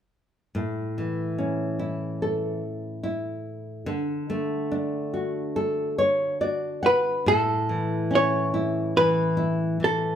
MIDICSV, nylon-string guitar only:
0, 0, Header, 1, 2, 480
1, 0, Start_track
1, 0, Key_signature, 3, "major"
1, 0, Tempo, 837989
1, 312, Time_signature, 4, 2, 24, 8
1, 2709, Tempo, 847458
1, 5781, End_track
2, 0, Start_track
2, 0, Title_t, "Nylon-string guitar"
2, 0, Program_c, 0, 24
2, 314, Note_on_c, 0, 45, 52
2, 560, Note_on_c, 0, 52, 39
2, 793, Note_on_c, 0, 61, 42
2, 1028, Note_on_c, 0, 64, 45
2, 1272, Note_on_c, 0, 69, 49
2, 1491, Note_off_c, 0, 52, 0
2, 1725, Note_off_c, 0, 61, 0
2, 1731, Note_off_c, 0, 64, 0
2, 1738, Note_on_c, 0, 64, 46
2, 2203, Note_off_c, 0, 69, 0
2, 2204, Note_off_c, 0, 45, 0
2, 2206, Note_off_c, 0, 64, 0
2, 2213, Note_on_c, 0, 50, 65
2, 2461, Note_on_c, 0, 57, 47
2, 2701, Note_on_c, 0, 62, 49
2, 2939, Note_on_c, 0, 66, 45
2, 3180, Note_on_c, 0, 69, 58
2, 3401, Note_off_c, 0, 57, 0
2, 3418, Note_off_c, 0, 69, 0
2, 3420, Note_on_c, 0, 73, 61
2, 3641, Note_off_c, 0, 62, 0
2, 3646, Note_off_c, 0, 73, 0
2, 3653, Note_off_c, 0, 66, 0
2, 3659, Note_on_c, 0, 66, 50
2, 3661, Note_on_c, 0, 74, 55
2, 3888, Note_off_c, 0, 74, 0
2, 3897, Note_on_c, 0, 78, 57
2, 4121, Note_off_c, 0, 50, 0
2, 4127, Note_off_c, 0, 78, 0
2, 4132, Note_off_c, 0, 66, 0
2, 4144, Note_on_c, 0, 45, 58
2, 4387, Note_on_c, 0, 52, 44
2, 4622, Note_on_c, 0, 61, 49
2, 4866, Note_on_c, 0, 64, 50
2, 5102, Note_off_c, 0, 52, 0
2, 5109, Note_on_c, 0, 52, 48
2, 5330, Note_off_c, 0, 64, 0
2, 5337, Note_on_c, 0, 64, 48
2, 5560, Note_off_c, 0, 61, 0
2, 5574, Note_off_c, 0, 52, 0
2, 5580, Note_on_c, 0, 52, 46
2, 5781, Note_off_c, 0, 45, 0
2, 5781, Note_off_c, 0, 52, 0
2, 5781, Note_off_c, 0, 64, 0
2, 5781, End_track
0, 0, End_of_file